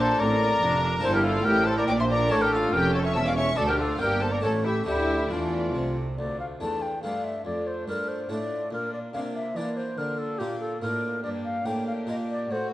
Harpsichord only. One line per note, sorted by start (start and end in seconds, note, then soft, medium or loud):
0.00 0.16 A#2 medium
0.00 0.97 A#3 medium
0.00 0.99 D4 medium
0.00 1.00 G4 medium
0.20 0.58 A2 medium
0.62 1.00 F2 medium
0.99 2.25 A#3 medium
0.99 2.25 D4 medium
0.99 2.26 E4 medium
1.03 1.42 G2 medium
1.46 1.84 A2 medium
1.89 2.27 A#2 medium
2.27 3.52 A3 medium
2.27 3.53 C#4 medium
2.27 3.54 E4 medium
2.31 2.69 A2 medium
2.74 3.12 F2 medium
3.15 3.54 E2 medium
3.53 3.97 A3 medium
3.53 3.98 D4 medium
3.58 3.96 D2 medium
3.97 4.40 G2 medium
3.97 4.41 A#3 medium
3.97 4.42 D4 soft
4.40 4.83 A2 medium
4.40 4.82 A3 medium
4.40 4.85 C#4 medium
4.84 5.26 D3 medium
4.84 5.28 A3 soft
4.84 6.13 D4 soft
5.31 5.70 E3 medium
5.74 6.13 C3 medium
6.18 6.57 D2 soft
6.60 6.99 E2 soft
6.60 6.91 A3 soft
6.60 6.91 D4 soft
7.03 7.41 G2 soft
7.03 7.34 A3 soft
7.03 7.34 D4 soft
7.45 7.83 F2 soft
7.88 8.26 G2 soft
7.88 8.18 A3 soft
7.88 8.19 D4 soft
8.29 8.67 A2 soft
8.29 8.60 A3 soft
8.29 8.60 D4 soft
8.71 9.09 A#2 soft
9.13 9.52 C3 soft
9.13 9.44 A#3 soft
9.13 9.45 D4 soft
9.56 9.94 E3 soft
9.56 9.87 A#3 soft
9.56 9.87 D4 soft
9.98 10.36 D3 soft
10.40 10.78 A#2 soft
10.40 10.70 A#3 soft
10.40 10.71 F4 soft
10.81 11.19 A2 soft
10.81 11.12 A#3 soft
10.81 11.13 F4 soft
11.24 11.62 G2 soft
11.66 12.04 A2 soft
11.66 11.96 A#3 soft
11.66 11.96 A#4 soft
12.07 12.46 A#2 soft
12.07 12.38 A#3 soft
12.07 12.38 A#4 soft
12.51 12.73 A2 soft